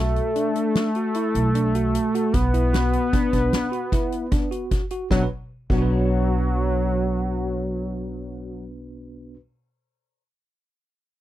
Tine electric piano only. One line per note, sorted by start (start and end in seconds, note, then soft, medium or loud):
0.00 0.30 F#4 medium
0.36 0.53 D4 medium
0.56 0.89 D4 medium
0.96 1.12 F#4 medium
1.15 1.48 E4 medium
1.55 1.71 D4 medium
1.75 2.08 F#4 medium
2.15 2.31 F#4 medium
2.54 2.70 E4 medium
2.73 3.06 F#4 medium
3.13 3.30 D4 medium
3.33 3.66 D4 medium
3.72 3.89 F#4 medium
3.93 4.26 E4 medium
4.32 4.48 D4 medium
4.51 4.84 F#4 medium
4.91 5.08 F#4 medium
5.11 5.22 B3 medium
5.11 5.24 D4 medium
5.18 5.26 F#4 medium
5.23 5.29 B4 medium
5.70 9.34 B3 medium
5.74 9.36 D4 medium
5.74 9.38 F#4 medium
5.82 9.40 B4 medium